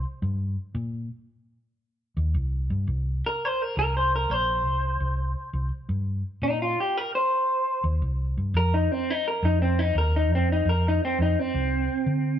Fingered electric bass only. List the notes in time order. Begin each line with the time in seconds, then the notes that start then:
0.22 G2
0.75 A#2
2.17 D#2
2.34 C2
2.70 G2
2.87 C2
3.77 C2
4.30 A#1
4.65 C2
5.00 C2
5.53 C2
5.89 G2
6.42 A#2
7.84 D#2
8.02 C2
8.37 G2
8.54 F2
9.43 F2
9.95 D#2
10.30 F2
10.65 F2
11.19 F2
11.54 C2
12.06 D3